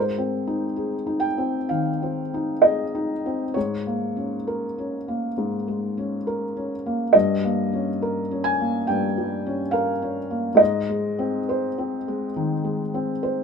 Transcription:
Already playing: G#2
0.00 C5
0.18 C4
0.47 D#4
0.76 G#4
1.06 D#4
1.20 G5
1.38 C4
1.69 D#3 F5
2.03 C4
2.34 D#4
2.62 G#4 D#5
2.95 D#4
3.26 C4
3.54 G#2 C#5
3.86 A#3
4.17 C#4
4.47 A#4
4.78 C#4
5.08 A#3
5.37 G#2
5.68 G#3
5.98 C#4
6.27 A#4
6.57 C#4
6.86 A#3
7.13 G2 D#5
7.44 A#3
7.73 C#4
8.02 A#4
8.31 C#4
8.44 G#5
8.61 A#3
8.87 G2 G5
9.18 G3
9.46 C#4
9.71 A#4 F5
10.02 C#4
10.31 A#3
10.55 G#2 D#5
10.89 G#3
11.19 C4
11.49 C5
11.78 C4
12.08 G#3
12.36 D#3
12.64 G#3
12.94 C4
13.23 C5

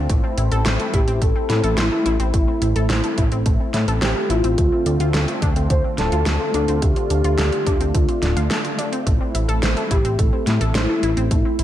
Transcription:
Already playing: C4
0.09 A1 A3 E4, kick, closed hi-hat
0.24 C4
0.37 A1 E4, closed hi-hat
0.52 A1 A4, closed hi-hat
0.66 A1 C5, snare, closed hi-hat
0.80 A4, closed hi-hat
0.94 A1 E4 G4, kick, closed hi-hat
1.08 A1 C4, closed hi-hat
1.22 A1 A3 A4, kick, closed hi-hat
1.36 C4
1.50 A2 E4, snare, closed hi-hat
1.64 A1 A4, closed hi-hat
1.78 A1 E4 C5, snare, closed hi-hat
1.92 A4
2.06 A1 E4, closed hi-hat
2.20 A1 C4, closed hi-hat
2.34 A1 A3 E4, kick, closed hi-hat
2.48 C4
2.62 A1 E4, closed hi-hat
2.76 A1 A4, closed hi-hat
2.90 A1 C5, snare, closed hi-hat
3.04 A4, closed hi-hat
3.18 A1 E4, kick, closed hi-hat
3.32 A1 C4, closed hi-hat
3.46 A1 A3, kick, closed hi-hat
3.60 C4
3.74 A2 E4, snare, closed hi-hat
3.88 A1 A4, closed hi-hat
4.02 A1 G4 C5, snare, closed hi-hat
4.16 A4
4.30 A1 E4 F4, closed hi-hat
4.44 A1 C4, closed hi-hat
4.58 D2 D3 A3 C4 F4, kick, closed hi-hat
4.72 C4
4.86 D2 D4, closed hi-hat
5.00 D2 F4, closed hi-hat
5.14 D2 A4, snare, closed hi-hat
5.28 F4, closed hi-hat
5.42 D2 D4, kick, closed hi-hat
5.56 D2 C4, closed hi-hat
5.70 D2 A3 C5, kick, closed hi-hat
5.84 C4
5.98 D1 D4 A4, snare, closed hi-hat
6.12 D2 F4, closed hi-hat
6.26 D2 A4, snare, closed hi-hat
6.40 F4
6.54 D2 D4, closed hi-hat
6.68 D2 C4, closed hi-hat
6.82 D2 A3 D4 G4, kick, closed hi-hat
6.96 C4, closed hi-hat
7.10 D2 D4, closed hi-hat
7.24 D2 F4, closed hi-hat
7.38 D2 A4, snare, closed hi-hat
7.52 F4, closed hi-hat
7.66 D2 D4, kick, closed hi-hat
7.80 D2 C4, closed hi-hat
7.94 D2 A3 F4, kick, closed hi-hat
8.09 C4, closed hi-hat
8.23 D1 D4, snare, closed hi-hat
8.37 D2 F4, closed hi-hat
8.50 A4, snare, closed hi-hat
8.64 F4, closed hi-hat
8.78 D4, closed hi-hat
8.92 C4, closed hi-hat
9.06 A1 A3 C4 E4, kick, closed hi-hat
9.21 C4
9.35 A1 E4, closed hi-hat
9.49 A1 A4, closed hi-hat
9.62 A1 C5, snare, closed hi-hat
9.77 A4, closed hi-hat
9.91 A1 E4 G4, kick, closed hi-hat
10.05 A1 C4, closed hi-hat
10.19 A1 A3 A4, kick, closed hi-hat
10.33 C4
10.47 A2 E4, snare, closed hi-hat
10.61 A1 A4, closed hi-hat
10.75 A1 E4 C5, snare, closed hi-hat
10.89 A4
11.03 A1 E4, closed hi-hat
11.17 A1 C4, closed hi-hat
11.31 A1 A3 E4, kick, closed hi-hat
11.45 C4
11.59 A1 E4, closed hi-hat

